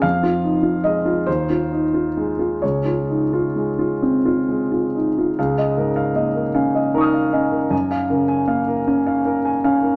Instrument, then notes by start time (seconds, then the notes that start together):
grand piano
0.02 F2 F5
0.23 F4
0.43 D#4
0.63 F4
0.84 G#3 D#5
1.05 F4
1.27 D#2 C5
1.50 F4
1.72 D#4
1.94 F4
2.17 G#3
2.39 F4
2.62 C#2 C#5
2.85 F4
3.09 D#4
3.33 F4
3.56 G#3
3.79 F4
4.02 C4
4.25 F4
4.48 G#3
4.71 F4
4.95 D#4
5.18 F4
5.39 C#2 F5
5.58 D#5
5.78 G#2 A#4
5.96 F5
6.15 A#3 D#5
6.35 A#4
6.55 C#4 F5
6.75 D#5
6.94 D#4 A#4 A#5 C#6
7.01 D#6 F6
7.14 F5
7.33 C#4 D#5
7.51 A#4
7.70 F#2 G#5
7.91 F5
8.10 C#3 A#4
8.28 G#5
8.47 A#3 F5
8.68 A#4
8.87 C#4 G#5
9.07 F5
9.25 A#4
9.45 G#5
9.64 C#4 F5
9.83 A#4